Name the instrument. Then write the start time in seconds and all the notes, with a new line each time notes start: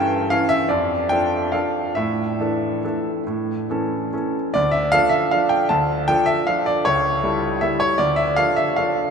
grand piano
Already playing: G2 E3 C#4 A4 G5 A5
0.30 E3 C#4 A4 F5
0.49 E5
0.69 F2 D5
1.09 F3 D4 A4 G5
1.52 F3 D4 A4 F5
1.95 A2 E5
2.40 E3 D4 A4
2.84 E3 D4 A4
3.27 A2
3.70 E3 C#4 A4
4.13 E3 C#4 A4
4.54 D2 D5
4.71 E5
4.92 F3 D4 A4 F5
5.09 E5
5.31 F3 D4 A4 F5
5.49 G5
5.69 D2 A5
6.08 F3 D4 A4 G5
6.26 E5
6.47 F3 D4 A4 F5
6.66 D5
6.85 C#2 C#5
7.24 G3 E4 A4
7.61 G3 E4 A4 E5
7.80 C#5
7.98 D2 D5
8.16 E5
8.36 F3 D4 A4 F5
8.56 E5
8.76 F3 D4 A4 F5